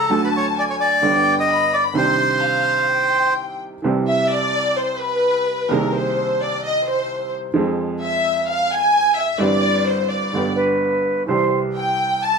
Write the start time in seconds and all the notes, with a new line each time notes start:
Already playing: A4 A#5
0.09 D2 D3 F#3 A3 F#4 A5
0.24 B4
0.37 C#5
0.57 D5 G#5
0.70 C#5
0.80 D5
1.01 G1 G2 D3 G3 B3 G4 G5
1.40 D#5
1.49 B5
1.73 D5
1.94 C2 C3 D#3 C4 D4 C6
1.98 G4 C5
2.43 F5
2.90 G5
3.82 C2 C3 E3 G3 C4
3.86 G4
4.08 E5
4.32 D5
4.78 C5
5.00 B4
5.70 C2 C3 D#3 A#3 C4 G#4 A#4
5.96 C5
6.42 D5
6.64 D#5
6.89 C5
7.54 F2 F3 G#3 C4
7.58 G#4
8.02 E5
8.50 F5
8.71 G#5
9.18 E5
9.38 G1 G2 E3 G3 C4 G4 D5
9.86 C5
10.11 D5
10.33 G1 G2 D3 G3 B3 G4
10.55 B4
11.27 C2 C3 E3 G3 C4 C5
11.31 G4
11.75 G5
12.22 A5